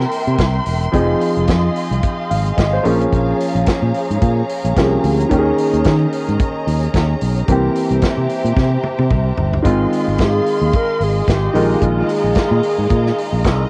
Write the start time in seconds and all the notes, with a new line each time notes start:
Already playing: E3 A#3 C4 G4 A#4 E5 G5 C6
0.11 open hi-hat
0.27 C3, closed hi-hat
0.38 C2, kick, snare, closed hi-hat
0.66 E1, open hi-hat
0.82 closed hi-hat
0.92 F1 F3 C4 D#4 G#4 D#5 F5, kick, closed hi-hat
1.21 open hi-hat
1.36 F1, closed hi-hat
1.47 F2, kick, snare, closed hi-hat
1.76 open hi-hat
1.91 C2, closed hi-hat
2.03 kick, closed hi-hat
2.30 G#1 F5, open hi-hat
2.46 closed hi-hat
2.57 G#1 D#5, kick, snare, closed hi-hat
2.73 C5
2.83 A#1 F3 A#3 C#4 G#4 C#5 A#5, open hi-hat
3.01 closed hi-hat
3.12 A#1, kick, closed hi-hat
3.40 open hi-hat
3.55 A#1, closed hi-hat
3.66 kick, snare, closed hi-hat
3.82 A#2
3.94 open hi-hat
4.10 G#2, closed hi-hat
4.21 A#2, kick, closed hi-hat
4.49 open hi-hat
4.64 A#1, closed hi-hat
4.76 C2 F3 A#3 C#4 G4, kick, snare, closed hi-hat
4.84 G#4
5.04 D2, open hi-hat
5.20 closed hi-hat
5.29 D#2 D#3 A#3 C#4 G4 D#5, kick, closed hi-hat
5.38 G#4
5.58 open hi-hat
5.73 D#2, closed hi-hat
5.84 D#3, kick, snare, closed hi-hat
6.12 open hi-hat
6.28 G#2, closed hi-hat
6.39 kick, closed hi-hat
6.67 D#2, open hi-hat
6.83 closed hi-hat
6.94 D#2, kick, snare, closed hi-hat
7.21 B1, open hi-hat
7.38 closed hi-hat
7.48 C2 E3 A#3 C4 G4 C5 E5, kick, closed hi-hat
7.75 open hi-hat
7.91 C2, closed hi-hat
8.02 kick, snare, closed hi-hat
8.17 C3
8.29 open hi-hat
8.44 A#2, closed hi-hat
8.56 C3, kick, snare
8.84 high tom
8.99 C3, high tom
9.11 C2, kick, mid tom
9.38 G1, floor tom
9.53 floor tom
9.62 G#1 D#3 G#3 C4 F4 D#5 F5 C6, kick, closed hi-hat
9.93 open hi-hat
10.08 G#1
10.18 G#2, kick, snare, closed hi-hat
10.22 G#4
10.46 open hi-hat
10.61 D#2
10.73 A#4, kick, closed hi-hat
11.00 G#1 G#4, open hi-hat
11.28 G#1 G4, kick, snare, closed hi-hat
11.54 A#1 D#3 G#3 A#3 F4 F5 A#5, open hi-hat
11.82 A#1 F4, kick, closed hi-hat
12.09 G#4, open hi-hat
12.24 A#1
12.35 kick, snare, closed hi-hat
12.51 A#2
12.63 open hi-hat
12.78 G#2
12.90 A#2, kick, closed hi-hat
13.06 snare
13.18 open hi-hat
13.32 A#1
13.44 C2, kick, snare, closed hi-hat